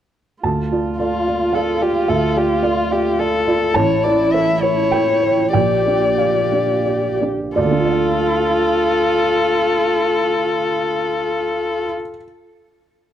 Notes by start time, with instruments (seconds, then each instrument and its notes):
0.43 felt piano D2 A5, viola F4
0.72 felt piano F4 D5
0.99 violin F4, felt piano A4 D5
1.27 felt piano F4 D5
1.53 felt piano A4 D5 F5, violin A4
1.81 felt piano F4 D5, violin G4
2.08 felt piano D2 E5, violin A4
2.36 felt piano F4 D5, violin G4
2.63 violin F4, felt piano A4 D5
2.90 felt piano F4 D5, violin G4
3.19 felt piano A4 D5, violin A4
3.47 felt piano F4 D5
3.74 felt piano A1 A5, viola E4, violin C#5
4.04 felt piano E4 C#5, violin D5
4.32 felt piano A4 C#5, violin E5
4.62 felt piano E4 C#5, violin C#5
4.91 felt piano A4 C#5 G5
5.22 felt piano E4 C#5
5.53 felt piano A#1 G5, viola G4, violin D5
5.86 felt piano D4 D5
6.18 felt piano G4 D5 F5
6.52 felt piano D4 D5
6.86 felt piano G4 D5
7.21 felt piano D4 D5
7.56 felt piano D2 D5, viola F4, violin A4
7.64 felt piano D3
7.71 felt piano D4
7.78 felt piano F4
7.85 felt piano D5
7.92 felt piano F5